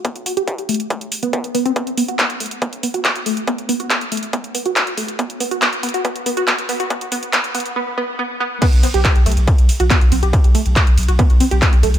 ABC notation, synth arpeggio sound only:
X:1
M:4/4
L:1/16
Q:1/4=140
K:Clyd
V:1 name="Synth arpeggio sound"
B, z F G z2 A, z4 B, B, z B, C | B, z B, F z2 A, z B, z B, F z2 A, z | B, z B, F z2 A, z B, z B, F z2 A, z | B, z B, F B, z B, F B, z B, F B, z B, F |
B, z B, z B, z B, z B, z B, z B, z B, z | B, z C G z2 A, z4 F B, z C G | z2 A, z4 F B, z C G z2 A, z |]